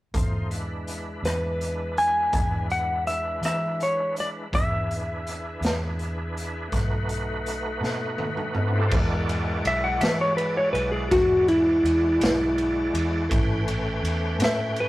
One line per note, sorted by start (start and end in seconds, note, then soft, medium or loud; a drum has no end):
0.14 1.19 E2 medium
0.14 0.50 A3 soft
0.14 0.50 D#4 medium
0.14 0.50 F4 soft
0.14 0.50 C5 medium
0.14 kick medium
0.14 closed hi-hat medium
0.50 4.48 G#3 medium
0.50 4.48 D4 medium
0.50 4.48 E4 medium
0.50 4.48 B4 medium
0.50 closed hi-hat medium
0.87 closed hi-hat soft
1.22 2.28 E2 medium
1.22 1.99 B4 medium
1.22 closed hi-hat medium
1.27 cross-stick medium
1.61 closed hi-hat medium
1.97 2.66 G#5 loud
1.97 closed hi-hat soft
2.33 3.38 E2 medium
2.33 kick medium
2.33 closed hi-hat medium
2.70 3.04 F#5 medium
2.70 closed hi-hat soft
3.07 3.44 E5 medium
3.07 closed hi-hat soft
3.42 4.48 E3 medium
3.42 cross-stick medium
3.42 closed hi-hat medium
3.46 3.81 E5 medium
3.80 4.15 C#5 medium
3.80 closed hi-hat soft
4.16 4.29 D5 medium
4.16 closed hi-hat medium
4.52 5.58 E2 medium
4.52 6.69 D4 medium
4.52 6.69 E4 medium
4.52 6.69 G#4 medium
4.52 6.68 B4 medium
4.52 6.69 E5 medium
4.52 kick medium
4.52 closed hi-hat medium
4.91 closed hi-hat soft
5.27 closed hi-hat medium
5.61 6.67 E2 medium
5.61 snare medium
5.61 closed hi-hat medium
5.99 closed hi-hat soft
6.37 closed hi-hat soft
6.68 8.59 A3 medium
6.68 8.87 D#4 medium
6.68 8.87 F#4 medium
6.68 8.82 B4 medium
6.72 7.77 B1 medium
6.72 kick medium
6.72 snare soft
6.72 closed hi-hat medium
7.09 closed hi-hat medium
7.46 closed hi-hat soft
7.81 8.86 B2 medium
7.81 snare soft
8.18 high tom medium
8.37 mid tom medium
8.55 mid tom medium
8.60 8.84 A3 medium
8.60 8.85 B3 medium
8.66 8.87 C4 medium
8.66 8.88 D4 medium
8.71 8.89 E4 medium
8.75 8.92 F4 medium
8.75 8.93 G4 medium
8.79 8.94 A4 medium
8.79 8.96 B4 medium
8.85 8.97 C5 medium
8.85 13.26 D5 medium
8.90 9.60 E2 medium
8.90 13.26 G#3 medium
8.90 13.25 E4 medium
8.90 13.26 F#4 medium
8.90 kick loud
8.90 crash medium
9.29 ride medium
9.64 9.98 B1 medium
9.64 9.83 E5 medium
9.64 ride medium
9.84 10.01 F#5 medium
10.01 10.70 E3 medium
10.01 10.18 E5 medium
10.01 snare loud
10.01 ride medium
10.21 10.37 C#5 medium
10.37 10.55 B4 medium
10.37 ride soft
10.57 10.72 C#5 medium
10.73 11.07 B1 medium
10.73 10.91 B4 medium
10.73 ride medium
10.92 11.09 G#4 medium
11.11 11.80 E2 medium
11.11 11.46 F#4 medium
11.11 kick loud
11.11 snare soft
11.11 ride medium
11.48 13.63 E4 medium
11.48 ride medium
11.84 12.17 E2 medium
11.84 ride medium
12.21 12.89 B1 medium
12.21 snare loud
12.21 ride medium
12.58 ride medium
12.94 13.27 E2 medium
12.94 ride medium
13.29 13.99 A1 medium
13.29 14.89 A3 medium
13.29 14.89 C#4 medium
13.29 14.89 B4 medium
13.29 14.89 G5 medium
13.29 kick loud
13.29 ride medium
13.68 ride medium
14.02 14.36 E2 medium
14.02 ride medium
14.39 14.89 A2 loud
14.39 snare loud
14.39 ride medium
14.44 14.77 E5 medium
14.76 ride medium
14.80 14.89 B4 medium